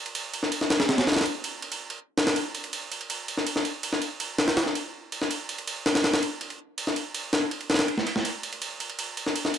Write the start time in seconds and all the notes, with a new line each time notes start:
0.06 ride
0.15 ride
0.34 ride
0.43 snare
0.52 ride
0.61 snare
0.70 snare, ride
0.80 snare, ride
0.89 snare, ride
0.98 snare, ride
1.07 snare, ride
1.12 snare, ride
1.17 snare, ride
1.21 snare, ride
1.26 ride
1.44 ride
1.62 ride
1.72 ride
1.90 ride
2.18 snare, ride
2.27 snare, ride
2.36 ride
2.55 ride
2.64 ride
2.73 ride
2.92 ride
3.01 ride
3.10 ride
3.28 ride
3.38 snare
3.47 ride
3.56 snare
3.65 ride
3.83 ride
3.93 snare
4.02 ride
4.20 ride
4.38 snare, ride
4.48 snare, ride
4.57 snare, ride
4.66 snare
4.75 ride
5.12 ride
5.22 snare
5.31 ride
5.49 ride
5.58 ride
5.67 ride
5.86 snare, ride
5.95 snare, ride
6.04 snare, ride
6.14 snare, ride
6.23 ride
6.41 ride
6.50 ride
6.78 ride
6.87 snare
6.96 ride
7.15 ride
7.33 snare, ride
7.51 ride
7.61 ride
7.70 snare, ride
7.74 snare, ride
7.79 snare, ride
7.88 ride
7.98 snare
8.07 ride
8.16 snare
8.25 ride
8.43 ride
8.53 ride
8.62 ride
8.80 ride
8.90 ride
8.99 ride
9.17 ride
9.27 snare
9.36 ride
9.45 snare
9.54 ride